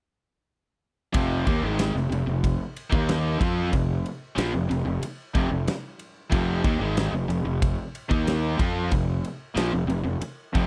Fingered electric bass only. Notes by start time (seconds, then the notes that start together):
1.15 F1
1.47 D#2
1.63 G#1
1.96 F1
2.11 F1
2.27 F1
2.93 D#2
3.41 F2
3.73 F1
4.37 A#1
4.55 F1
4.71 F1
4.86 F1
5.03 muted fingered electric bass stroke
5.35 F1
5.52 F1
6.32 F1
6.65 D#2
6.80 G#1
7.12 F1
7.29 F1
7.45 F1
8.11 D#2
8.60 F2
8.92 F1
9.56 A#1
9.73 F1
9.88 F1
10.05 F1
10.21 muted fingered electric bass stroke
10.55 F1